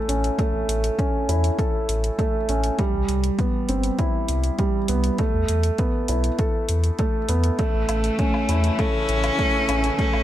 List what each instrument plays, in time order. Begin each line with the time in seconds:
Already playing: felt piano A3 C#4 E4 A4
0.08 sub bass A1, felt piano C#4, closed hi-hat
0.24 closed hi-hat
0.39 felt piano A3, kick, closed hi-hat
0.53 sub bass A1
0.68 sub bass A1, closed hi-hat
0.84 closed hi-hat
0.99 felt piano C#4, kick, closed hi-hat
1.29 sub bass E2, felt piano E4, closed hi-hat
1.44 closed hi-hat
1.59 felt piano A4, kick, closed hi-hat
1.89 sub bass A1, closed hi-hat
2.04 closed hi-hat
2.19 felt piano A3, kick, closed hi-hat
2.49 sub bass A1, felt piano C#4, closed hi-hat
2.64 closed hi-hat
2.79 felt piano G3, kick, closed hi-hat
2.94 sub bass C2
3.09 sub bass C2, closed hi-hat
3.24 closed hi-hat
3.39 felt piano B3, kick, closed hi-hat
3.69 sub bass G1, felt piano C4, closed hi-hat
3.84 closed hi-hat
3.99 felt piano E4, kick, closed hi-hat
4.28 sub bass C2, closed hi-hat
4.44 closed hi-hat
4.59 felt piano G3, kick, closed hi-hat
4.88 sub bass C2, felt piano B3, closed hi-hat
5.04 closed hi-hat
5.18 felt piano A3, kick, closed hi-hat
5.34 sub bass E2
5.48 sub bass E2, closed hi-hat
5.63 closed hi-hat
5.78 felt piano B3, kick, closed hi-hat
6.08 sub bass B1, felt piano E4, closed hi-hat
6.24 closed hi-hat
6.39 felt piano A4, kick, closed hi-hat
6.69 sub bass E2, closed hi-hat
6.84 closed hi-hat
6.99 felt piano A3, kick, closed hi-hat
7.29 sub bass E2, felt piano B3, closed hi-hat
7.44 closed hi-hat
7.59 string quartet C#3 E3 A3 E4, felt piano A3, cello A3, kick, closed hi-hat
7.74 sub bass A1
7.89 sub bass A1, closed hi-hat, low woodblock
8.04 closed hi-hat
8.19 felt piano C#4, kick, closed hi-hat
8.34 low woodblock
8.49 sub bass E2, felt piano E4, closed hi-hat
8.64 closed hi-hat
8.79 cello C#4, felt piano A4, kick, closed hi-hat, low woodblock
9.09 sub bass A1, closed hi-hat
9.24 closed hi-hat, low woodblock
9.39 felt piano A3, kick, closed hi-hat
9.69 sub bass A1, felt piano C#4, closed hi-hat, low woodblock
9.84 closed hi-hat
9.99 felt piano A3, cello C#4, kick, closed hi-hat
10.13 sub bass A1, low woodblock